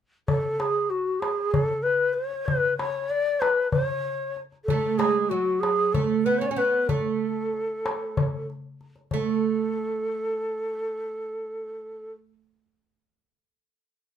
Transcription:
0.28 A4, darbuka dum
0.60 G#4, darbuka tek
0.90 F#4, darbuka ka
1.20 G#4, darbuka tek
1.51 A4, darbuka dum
1.83 B4, darbuka ka
2.13 C#5, darbuka ka
2.33 darbuka ka
2.46 B4, darbuka dum
2.77 C#5, darbuka tek
3.10 D5, darbuka ka
3.40 B4, darbuka tek
3.71 C5, darbuka dum
3.86 C#5
4.05 darbuka ka
4.37 darbuka ka
4.52 darbuka ka
4.65 A4, darbuka dum
4.70 A3
4.98 G#3 G#4, darbuka tek
5.29 F#3 F#4, darbuka ka
5.60 G#4, darbuka tek
5.93 A3 A4, darbuka dum
6.25 B3 B4, darbuka ka
6.39 C#4 C#5
6.46 C#5 D5
6.51 C#4
6.56 B3 B4, darbuka ka
6.74 darbuka ka
6.88 A3 A4, darbuka dum
7.53 darbuka ka
7.86 darbuka tek
8.17 darbuka dum
8.50 darbuka ka
8.81 darbuka ka
8.96 darbuka ka
9.11 A3 A4, darbuka dum

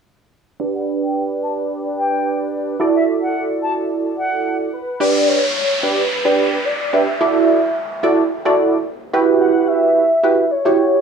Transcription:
0.60 D4 G4 B4 D5
0.74 F#5
1.03 G5
1.43 A5
1.98 G5
2.80 E4 F#4 A4 D5
2.95 E5
3.22 F#5
3.63 A5
4.18 F#5
4.73 B4
5.00 D4 G4 B4 D5, downlifter
5.28 C#5
5.55 C#5
5.83 D4 G4 B4 D5
6.25 D4 G4 B4 D5
6.65 D5
6.93 D4 G4 B4 D5 E5
7.21 E4 F#4 A4 D5
8.03 E4 F#4 A4 D5
8.45 E4 F#4 A4 D5
9.13 E4 F#4 G4 B4
9.40 F#5
9.68 E5
10.23 E4 F#4 G4 B4
10.51 C#5
10.65 E4 F#4 G4 C#5

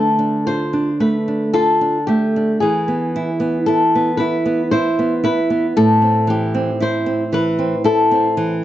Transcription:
Already playing: D3 A3 A4
0.19 D4
0.47 F4 C5
0.73 D4
1.00 A3 B4
1.28 D4
1.53 F4 A4
1.81 D4
2.07 A3 G4
2.36 D4
2.60 E3 G#4
2.88 B3
3.16 E4
3.40 B3
3.66 E4 A4
3.95 B3
4.17 E4 B4
4.46 B3
4.71 E4 C5
4.99 B3
5.24 E4 B4
5.50 B3
5.77 A2 A4
6.02 C4
6.27 E3 G4
6.55 C4
6.80 E4 C5
7.06 C4
7.33 E3 B4
7.59 C4
7.84 E4 A4
8.11 C4
8.37 E3

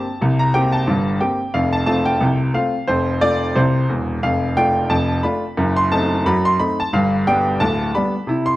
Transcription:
Already playing: A5
0.21 C2 C3
0.39 A#5
0.54 A#3 C4 G4 G5
0.72 A5
0.87 G1 G2
1.20 A#3 C4 G4 G5
1.54 F1 F2 F5
1.73 A5
1.86 A3 C4 F4 A5
2.05 G5
2.21 C2 C3
2.54 A3 C4 F4 F5
2.88 F1 F2 C5
3.21 A3 C4 F4 D5
3.55 C2 C3 C5
3.89 E1 E2
4.23 F1 F2 F5
4.57 A3 D4 F4 G5
4.89 F1 F2 A5
5.23 A3 D4 F4 B5
5.57 F#1 F#2
5.76 C6
5.91 A3 C4 D#4 A5
6.26 F#2 F#3 B5
6.45 C6
6.59 A3 C4 D#4 B5
6.80 A5
6.93 G1 G2 F5
7.27 G3 B3 D4 G5
7.60 D1 D2 A5
7.95 G3 B3 D4 B5
8.27 C3 E4
8.46 C6

